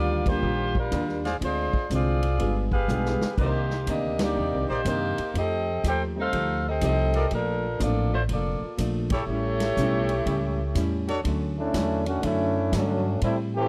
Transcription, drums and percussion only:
0.26 kick, ride
0.75 kick
0.92 kick, hi-hat pedal, ride
1.09 snare
1.25 snare, ride
1.41 kick, ride
1.73 kick
1.90 kick, hi-hat pedal, ride
2.23 ride
2.39 kick, ride
2.72 kick
2.89 hi-hat pedal
3.06 snare
3.21 snare
3.38 kick, crash
3.70 snare
3.87 kick, hi-hat pedal, ride
4.19 snare, ride
4.85 kick, hi-hat pedal, ride
5.18 ride
5.35 kick, ride
5.84 kick, hi-hat pedal, ride
6.33 kick, ride
6.81 kick, hi-hat pedal, ride
7.14 ride
7.31 kick, ride
7.80 kick, hi-hat pedal, ride
8.29 kick, ride
8.78 kick, hi-hat pedal, ride
9.10 kick, ride
9.60 snare, ride
9.77 kick, hi-hat pedal
10.09 ride
10.26 kick, ride
10.75 kick, hi-hat pedal, ride
11.08 ride
11.25 kick, ride
11.74 kick, snare, hi-hat pedal, ride
12.06 ride
12.23 kick, ride
12.73 kick, snare, hi-hat pedal, ride
13.21 kick, ride

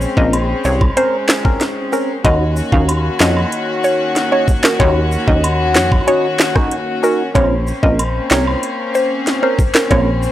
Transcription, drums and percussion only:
0.01 cabasa
0.17 kick
0.33 closed hi-hat, high woodblock
0.64 cabasa
0.81 kick, high woodblock
0.97 closed hi-hat
1.28 snare, clap, cabasa
1.45 kick
1.61 snare, closed hi-hat
1.93 cabasa
2.25 kick, closed hi-hat, high woodblock
2.56 cabasa
2.72 kick
2.88 closed hi-hat, high woodblock
3.20 snare, clap, cabasa
3.37 high woodblock
3.52 closed hi-hat
3.84 cabasa
4.16 snare, closed hi-hat
4.48 kick, cabasa
4.64 snare, clap
4.80 kick, closed hi-hat, high woodblock
5.12 cabasa
5.28 kick
5.44 closed hi-hat, high woodblock
5.75 snare, clap, cabasa
5.92 kick, high woodblock
6.08 closed hi-hat
6.39 snare, clap, cabasa
6.56 kick, cross-stick
6.71 closed hi-hat
7.04 cabasa
7.35 kick, closed hi-hat, high woodblock
7.67 cabasa
7.83 kick
7.99 closed hi-hat, high woodblock
8.30 snare, clap, cabasa
8.47 high woodblock
8.63 closed hi-hat
8.95 cabasa
9.27 snare, closed hi-hat
9.59 kick, cabasa
9.75 snare, clap
9.91 kick, closed hi-hat, high woodblock
10.23 cabasa

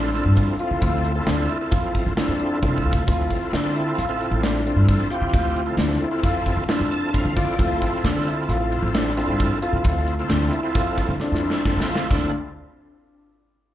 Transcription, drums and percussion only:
0.14 snare, closed hi-hat
0.37 kick, closed hi-hat
0.59 closed hi-hat
0.82 kick, closed hi-hat
1.05 closed hi-hat
1.27 snare, closed hi-hat
1.49 closed hi-hat
1.72 kick, closed hi-hat
1.95 kick, closed hi-hat
2.17 snare, closed hi-hat
2.39 closed hi-hat
2.63 kick
2.78 kick
2.93 kick
3.08 kick, closed hi-hat
3.31 kick, closed hi-hat
3.53 snare, closed hi-hat
3.76 closed hi-hat
3.99 snare, closed hi-hat
4.21 closed hi-hat
4.43 snare, closed hi-hat
4.67 closed hi-hat
4.89 kick, closed hi-hat
5.12 closed hi-hat
5.34 kick, closed hi-hat
5.56 closed hi-hat
5.78 snare, closed hi-hat
6.01 closed hi-hat
6.23 kick, closed hi-hat
6.46 kick, closed hi-hat
6.69 snare, closed hi-hat
6.92 closed hi-hat
7.14 kick, closed hi-hat
7.37 kick, snare, closed hi-hat
7.59 kick, closed hi-hat
7.82 kick, closed hi-hat
8.05 snare, closed hi-hat
8.27 snare, closed hi-hat
8.49 snare, closed hi-hat
8.72 closed hi-hat
8.95 snare, closed hi-hat
9.17 snare, closed hi-hat
9.40 kick, closed hi-hat
9.62 closed hi-hat
9.84 kick, closed hi-hat
10.08 closed hi-hat
10.30 snare, closed hi-hat
10.53 closed hi-hat
10.75 kick, snare, closed hi-hat
10.97 kick, snare, closed hi-hat
11.20 snare
11.35 snare
11.50 snare
11.65 kick, snare
11.80 snare
11.95 snare
12.11 kick, crash

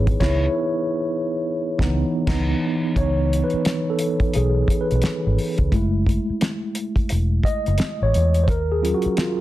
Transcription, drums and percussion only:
0.07 kick, closed hi-hat
0.20 kick, snare, crash
1.79 kick, snare
2.27 kick, snare, crash
2.96 kick, closed hi-hat
3.33 closed hi-hat
3.50 closed hi-hat
3.65 snare, closed hi-hat
3.99 closed hi-hat
4.20 kick, closed hi-hat
4.34 closed hi-hat
4.68 kick, closed hi-hat
4.91 closed hi-hat
5.02 snare, closed hi-hat
5.38 open hi-hat
5.58 kick, closed hi-hat
5.72 kick, closed hi-hat
6.06 kick, closed hi-hat
6.41 snare, closed hi-hat
6.75 closed hi-hat
6.96 kick, closed hi-hat
7.09 closed hi-hat
7.43 kick, closed hi-hat
7.66 closed hi-hat
7.78 snare, closed hi-hat
8.14 closed hi-hat
8.34 closed hi-hat
8.48 kick, closed hi-hat
8.85 closed hi-hat
9.02 closed hi-hat
9.17 snare, closed hi-hat

